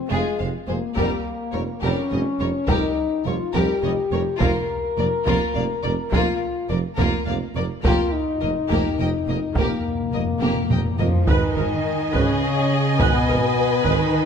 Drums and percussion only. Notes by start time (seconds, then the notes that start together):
0.97 taiko
2.68 taiko
3.54 taiko
4.40 taiko
5.27 taiko
6.12 taiko
6.98 taiko
7.85 taiko
8.70 taiko
9.56 taiko
10.43 taiko high
10.71 taiko low-mid
10.99 taiko low
11.27 taiko
12.14 taiko
12.99 taiko
13.85 taiko